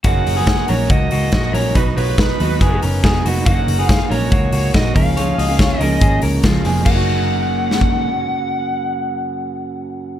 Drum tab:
CC |----------------|----------------|----------------|----------------|
HH |x-o-x-o-x-o-x-o-|x-o-x-o-x-o-x-o-|x-o-x-o-x-o-x-o-|x-o-x-o-x-o-x-o-|
SD |----o-------o---|----o-------o---|----o-------o---|----o-------o---|
BD |o---o---o---o---|o---o---o---o---|o---o---o---o-o-|----o---o---o---|

CC |x---------------|----------------|
HH |----------------|----------------|
SD |--------o-------|----------------|
BD |o--------o------|----------------|